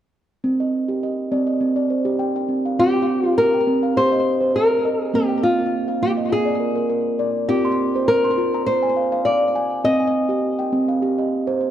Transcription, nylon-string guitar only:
0, 0, Header, 1, 2, 480
1, 0, Start_track
1, 0, Key_signature, -3, "minor"
1, 0, Tempo, 587659
1, 354, Time_signature, 4, 2, 24, 8
1, 9561, End_track
2, 0, Start_track
2, 0, Title_t, "Nylon-string guitar"
2, 0, Program_c, 0, 24
2, 2283, Note_on_c, 0, 67, 70
2, 2667, Note_off_c, 0, 67, 0
2, 2667, Note_on_c, 0, 65, 70
2, 2754, Note_off_c, 0, 65, 0
2, 2757, Note_on_c, 0, 70, 75
2, 3240, Note_off_c, 0, 70, 0
2, 3243, Note_on_c, 0, 72, 78
2, 3719, Note_off_c, 0, 72, 0
2, 3722, Note_on_c, 0, 70, 59
2, 4106, Note_off_c, 0, 70, 0
2, 4106, Note_on_c, 0, 68, 59
2, 4203, Note_off_c, 0, 68, 0
2, 4206, Note_on_c, 0, 67, 72
2, 4425, Note_off_c, 0, 67, 0
2, 4439, Note_on_c, 0, 65, 63
2, 4922, Note_on_c, 0, 67, 66
2, 4932, Note_off_c, 0, 65, 0
2, 4986, Note_off_c, 0, 67, 0
2, 5165, Note_on_c, 0, 68, 66
2, 5609, Note_off_c, 0, 68, 0
2, 6116, Note_on_c, 0, 67, 66
2, 6596, Note_off_c, 0, 67, 0
2, 6599, Note_on_c, 0, 70, 79
2, 7076, Note_off_c, 0, 70, 0
2, 7080, Note_on_c, 0, 72, 77
2, 7551, Note_off_c, 0, 72, 0
2, 7555, Note_on_c, 0, 74, 63
2, 8004, Note_off_c, 0, 74, 0
2, 8042, Note_on_c, 0, 75, 79
2, 9561, Note_off_c, 0, 75, 0
2, 9561, End_track
0, 0, End_of_file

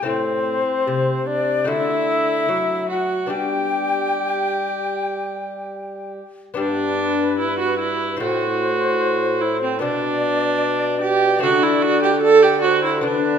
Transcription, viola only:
0, 0, Header, 1, 2, 480
1, 0, Start_track
1, 0, Key_signature, 1, "major"
1, 0, Tempo, 814111
1, 38, Time_signature, 4, 2, 24, 8
1, 4838, Tempo, 805369
1, 7925, End_track
2, 0, Start_track
2, 0, Title_t, "Viola"
2, 0, Program_c, 0, 41
2, 45, Note_on_c, 0, 60, 78
2, 739, Note_off_c, 0, 60, 0
2, 746, Note_on_c, 0, 62, 82
2, 981, Note_off_c, 0, 62, 0
2, 993, Note_on_c, 0, 64, 92
2, 1696, Note_off_c, 0, 64, 0
2, 1705, Note_on_c, 0, 66, 72
2, 1952, Note_on_c, 0, 67, 85
2, 1961, Note_off_c, 0, 66, 0
2, 3640, Note_off_c, 0, 67, 0
2, 3880, Note_on_c, 0, 62, 98
2, 4335, Note_off_c, 0, 62, 0
2, 4356, Note_on_c, 0, 64, 91
2, 4473, Note_off_c, 0, 64, 0
2, 4476, Note_on_c, 0, 66, 89
2, 4592, Note_off_c, 0, 66, 0
2, 4596, Note_on_c, 0, 64, 89
2, 4831, Note_off_c, 0, 64, 0
2, 4840, Note_on_c, 0, 66, 97
2, 5556, Note_on_c, 0, 64, 94
2, 5565, Note_off_c, 0, 66, 0
2, 5677, Note_off_c, 0, 64, 0
2, 5685, Note_on_c, 0, 60, 80
2, 5790, Note_off_c, 0, 60, 0
2, 5794, Note_on_c, 0, 62, 102
2, 6503, Note_off_c, 0, 62, 0
2, 6512, Note_on_c, 0, 67, 103
2, 6751, Note_off_c, 0, 67, 0
2, 6759, Note_on_c, 0, 66, 108
2, 6877, Note_on_c, 0, 64, 98
2, 6886, Note_off_c, 0, 66, 0
2, 6993, Note_on_c, 0, 66, 117
2, 7002, Note_off_c, 0, 64, 0
2, 7110, Note_off_c, 0, 66, 0
2, 7114, Note_on_c, 0, 67, 93
2, 7224, Note_off_c, 0, 67, 0
2, 7228, Note_on_c, 0, 69, 127
2, 7352, Note_on_c, 0, 67, 104
2, 7361, Note_off_c, 0, 69, 0
2, 7465, Note_off_c, 0, 67, 0
2, 7468, Note_on_c, 0, 66, 104
2, 7590, Note_off_c, 0, 66, 0
2, 7602, Note_on_c, 0, 64, 85
2, 7715, Note_off_c, 0, 64, 0
2, 7718, Note_on_c, 0, 62, 99
2, 7925, Note_off_c, 0, 62, 0
2, 7925, End_track
0, 0, End_of_file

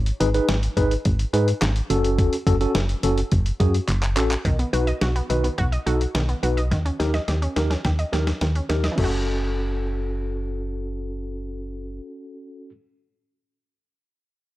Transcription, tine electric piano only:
0, 0, Header, 1, 2, 480
1, 0, Start_track
1, 0, Tempo, 566038
1, 1854, Time_signature, 4, 2, 24, 8
1, 12349, End_track
2, 0, Start_track
2, 0, Title_t, "Tine electric piano"
2, 0, Program_c, 0, 4
2, 172, Note_on_c, 0, 71, 103
2, 173, Note_on_c, 0, 63, 92
2, 173, Note_on_c, 0, 68, 83
2, 239, Note_off_c, 0, 63, 0
2, 239, Note_off_c, 0, 68, 0
2, 239, Note_off_c, 0, 71, 0
2, 293, Note_on_c, 0, 63, 78
2, 293, Note_on_c, 0, 68, 71
2, 293, Note_on_c, 0, 71, 88
2, 424, Note_off_c, 0, 68, 0
2, 424, Note_off_c, 0, 71, 0
2, 425, Note_off_c, 0, 63, 0
2, 652, Note_on_c, 0, 63, 92
2, 652, Note_on_c, 0, 71, 105
2, 653, Note_on_c, 0, 68, 81
2, 784, Note_off_c, 0, 63, 0
2, 784, Note_off_c, 0, 68, 0
2, 784, Note_off_c, 0, 71, 0
2, 1130, Note_on_c, 0, 71, 98
2, 1131, Note_on_c, 0, 63, 86
2, 1131, Note_on_c, 0, 68, 79
2, 1263, Note_off_c, 0, 63, 0
2, 1263, Note_off_c, 0, 71, 0
2, 1264, Note_off_c, 0, 68, 0
2, 1611, Note_on_c, 0, 61, 87
2, 1611, Note_on_c, 0, 66, 80
2, 1612, Note_on_c, 0, 69, 98
2, 1996, Note_off_c, 0, 61, 0
2, 1997, Note_off_c, 0, 66, 0
2, 1997, Note_off_c, 0, 69, 0
2, 2092, Note_on_c, 0, 61, 89
2, 2092, Note_on_c, 0, 66, 80
2, 2092, Note_on_c, 0, 69, 96
2, 2158, Note_off_c, 0, 69, 0
2, 2159, Note_off_c, 0, 61, 0
2, 2159, Note_off_c, 0, 66, 0
2, 2211, Note_on_c, 0, 61, 81
2, 2212, Note_on_c, 0, 66, 72
2, 2212, Note_on_c, 0, 69, 91
2, 2344, Note_off_c, 0, 61, 0
2, 2344, Note_off_c, 0, 66, 0
2, 2344, Note_off_c, 0, 69, 0
2, 2574, Note_on_c, 0, 61, 92
2, 2574, Note_on_c, 0, 66, 82
2, 2574, Note_on_c, 0, 69, 102
2, 2705, Note_off_c, 0, 61, 0
2, 2705, Note_off_c, 0, 66, 0
2, 2705, Note_off_c, 0, 69, 0
2, 3052, Note_on_c, 0, 61, 86
2, 3052, Note_on_c, 0, 66, 79
2, 3052, Note_on_c, 0, 68, 94
2, 3184, Note_off_c, 0, 61, 0
2, 3184, Note_off_c, 0, 66, 0
2, 3184, Note_off_c, 0, 68, 0
2, 3533, Note_on_c, 0, 61, 87
2, 3533, Note_on_c, 0, 66, 79
2, 3533, Note_on_c, 0, 69, 96
2, 3664, Note_off_c, 0, 66, 0
2, 3665, Note_off_c, 0, 61, 0
2, 3665, Note_off_c, 0, 69, 0
2, 4011, Note_on_c, 0, 66, 78
2, 4012, Note_on_c, 0, 63, 83
2, 4012, Note_on_c, 0, 71, 92
2, 4144, Note_off_c, 0, 63, 0
2, 4144, Note_off_c, 0, 66, 0
2, 4144, Note_off_c, 0, 71, 0
2, 4494, Note_on_c, 0, 63, 82
2, 4494, Note_on_c, 0, 66, 79
2, 4494, Note_on_c, 0, 71, 95
2, 4625, Note_off_c, 0, 63, 0
2, 4625, Note_off_c, 0, 66, 0
2, 4625, Note_off_c, 0, 71, 0
2, 4973, Note_on_c, 0, 63, 81
2, 4973, Note_on_c, 0, 66, 73
2, 4973, Note_on_c, 0, 69, 90
2, 5104, Note_off_c, 0, 66, 0
2, 5105, Note_off_c, 0, 63, 0
2, 5105, Note_off_c, 0, 69, 0
2, 5453, Note_on_c, 0, 63, 81
2, 5453, Note_on_c, 0, 66, 70
2, 5453, Note_on_c, 0, 71, 86
2, 5584, Note_off_c, 0, 66, 0
2, 5584, Note_off_c, 0, 71, 0
2, 5585, Note_off_c, 0, 63, 0
2, 5933, Note_on_c, 0, 63, 84
2, 5933, Note_on_c, 0, 67, 75
2, 5933, Note_on_c, 0, 70, 90
2, 6064, Note_off_c, 0, 63, 0
2, 6065, Note_off_c, 0, 67, 0
2, 6065, Note_off_c, 0, 70, 0
2, 6413, Note_on_c, 0, 67, 75
2, 6413, Note_on_c, 0, 70, 91
2, 6414, Note_on_c, 0, 63, 81
2, 6545, Note_off_c, 0, 63, 0
2, 6545, Note_off_c, 0, 67, 0
2, 6545, Note_off_c, 0, 70, 0
2, 6891, Note_on_c, 0, 63, 77
2, 6891, Note_on_c, 0, 67, 72
2, 6892, Note_on_c, 0, 70, 86
2, 7024, Note_off_c, 0, 63, 0
2, 7024, Note_off_c, 0, 67, 0
2, 7024, Note_off_c, 0, 70, 0
2, 7371, Note_on_c, 0, 70, 87
2, 7372, Note_on_c, 0, 63, 78
2, 7372, Note_on_c, 0, 67, 68
2, 7504, Note_off_c, 0, 63, 0
2, 7504, Note_off_c, 0, 67, 0
2, 7504, Note_off_c, 0, 70, 0
2, 7594, Note_on_c, 0, 61, 78
2, 7611, Note_on_c, 0, 66, 71
2, 7628, Note_on_c, 0, 69, 83
2, 10762, Note_off_c, 0, 61, 0
2, 10770, Note_off_c, 0, 66, 0
2, 10779, Note_off_c, 0, 69, 0
2, 12349, End_track
0, 0, End_of_file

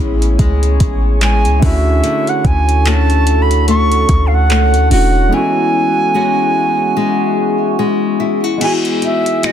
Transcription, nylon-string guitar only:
0, 0, Header, 1, 2, 480
1, 0, Start_track
1, 0, Key_signature, 4, "major"
1, 0, Tempo, 821918
1, 1189, Time_signature, 4, 2, 24, 8
1, 5560, End_track
2, 0, Start_track
2, 0, Title_t, "Nylon-string guitar"
2, 0, Program_c, 0, 24
2, 0, Note_on_c, 0, 45, 87
2, 0, Note_on_c, 0, 56, 64
2, 0, Note_on_c, 0, 61, 63
2, 0, Note_on_c, 0, 64, 68
2, 223, Note_off_c, 0, 56, 0
2, 230, Note_on_c, 0, 56, 69
2, 702, Note_off_c, 0, 56, 0
2, 709, Note_on_c, 0, 56, 65
2, 949, Note_on_c, 0, 50, 80
2, 1005, Note_off_c, 0, 45, 0
2, 1005, Note_off_c, 0, 56, 0
2, 1008, Note_off_c, 0, 64, 0
2, 1183, Note_off_c, 0, 50, 0
2, 1190, Note_on_c, 0, 50, 88
2, 1207, Note_off_c, 0, 61, 0
2, 1670, Note_on_c, 0, 57, 64
2, 1674, Note_on_c, 0, 61, 64
2, 1677, Note_on_c, 0, 66, 66
2, 2143, Note_off_c, 0, 57, 0
2, 2150, Note_on_c, 0, 57, 73
2, 2624, Note_off_c, 0, 57, 0
2, 2631, Note_on_c, 0, 57, 67
2, 2867, Note_off_c, 0, 66, 0
2, 2869, Note_on_c, 0, 66, 69
2, 3107, Note_off_c, 0, 50, 0
2, 3109, Note_on_c, 0, 52, 84
2, 3166, Note_off_c, 0, 57, 0
2, 3588, Note_on_c, 0, 56, 65
2, 3589, Note_off_c, 0, 61, 0
2, 3592, Note_on_c, 0, 61, 64
2, 3593, Note_off_c, 0, 66, 0
2, 3595, Note_on_c, 0, 66, 67
2, 4066, Note_off_c, 0, 56, 0
2, 4068, Note_on_c, 0, 56, 74
2, 4546, Note_off_c, 0, 56, 0
2, 4549, Note_on_c, 0, 56, 67
2, 4786, Note_off_c, 0, 66, 0
2, 4788, Note_on_c, 0, 64, 68
2, 4927, Note_off_c, 0, 64, 0
2, 4927, Note_on_c, 0, 66, 57
2, 5025, Note_off_c, 0, 52, 0
2, 5027, Note_on_c, 0, 52, 80
2, 5084, Note_off_c, 0, 66, 0
2, 5086, Note_off_c, 0, 61, 0
2, 5267, Note_on_c, 0, 63, 59
2, 5505, Note_off_c, 0, 56, 0
2, 5507, Note_on_c, 0, 56, 59
2, 5508, Note_off_c, 0, 63, 0
2, 5514, Note_on_c, 0, 66, 65
2, 5560, Note_off_c, 0, 52, 0
2, 5560, Note_off_c, 0, 56, 0
2, 5560, Note_off_c, 0, 66, 0
2, 5560, End_track
0, 0, End_of_file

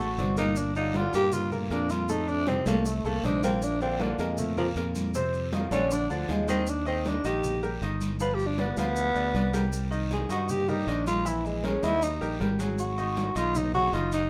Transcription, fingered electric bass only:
0, 0, Header, 1, 2, 480
1, 0, Start_track
1, 0, Key_signature, -2, "major"
1, 0, Tempo, 381679
1, 711, Time_signature, 4, 2, 24, 8
1, 8391, Key_signature, -3, "major"
1, 17982, End_track
2, 0, Start_track
2, 0, Title_t, "Fingered electric bass"
2, 0, Program_c, 0, 33
2, 0, Note_on_c, 0, 33, 67
2, 210, Note_off_c, 0, 33, 0
2, 226, Note_on_c, 0, 31, 91
2, 1354, Note_off_c, 0, 31, 0
2, 1430, Note_on_c, 0, 43, 84
2, 2100, Note_off_c, 0, 43, 0
2, 2142, Note_on_c, 0, 41, 98
2, 3272, Note_off_c, 0, 41, 0
2, 3345, Note_on_c, 0, 36, 85
2, 3794, Note_off_c, 0, 36, 0
2, 3825, Note_on_c, 0, 36, 68
2, 4051, Note_off_c, 0, 36, 0
2, 4068, Note_on_c, 0, 34, 92
2, 5195, Note_off_c, 0, 34, 0
2, 5262, Note_on_c, 0, 41, 90
2, 5936, Note_off_c, 0, 41, 0
2, 5982, Note_on_c, 0, 41, 100
2, 7112, Note_off_c, 0, 41, 0
2, 7180, Note_on_c, 0, 34, 97
2, 7631, Note_off_c, 0, 34, 0
2, 7668, Note_on_c, 0, 38, 70
2, 7892, Note_off_c, 0, 38, 0
2, 7907, Note_on_c, 0, 39, 104
2, 9036, Note_off_c, 0, 39, 0
2, 9110, Note_on_c, 0, 34, 80
2, 9781, Note_off_c, 0, 34, 0
2, 9829, Note_on_c, 0, 31, 107
2, 10958, Note_off_c, 0, 31, 0
2, 11030, Note_on_c, 0, 38, 83
2, 11478, Note_off_c, 0, 38, 0
2, 11507, Note_on_c, 0, 38, 70
2, 11734, Note_off_c, 0, 38, 0
2, 11751, Note_on_c, 0, 36, 109
2, 12879, Note_off_c, 0, 36, 0
2, 12943, Note_on_c, 0, 43, 94
2, 13619, Note_off_c, 0, 43, 0
2, 13670, Note_on_c, 0, 34, 96
2, 14799, Note_off_c, 0, 34, 0
2, 14878, Note_on_c, 0, 39, 90
2, 15323, Note_off_c, 0, 39, 0
2, 15360, Note_on_c, 0, 34, 70
2, 15581, Note_off_c, 0, 34, 0
2, 15595, Note_on_c, 0, 32, 91
2, 16721, Note_off_c, 0, 32, 0
2, 16797, Note_on_c, 0, 35, 85
2, 17466, Note_off_c, 0, 35, 0
2, 17512, Note_on_c, 0, 30, 107
2, 17982, Note_off_c, 0, 30, 0
2, 17982, End_track
0, 0, End_of_file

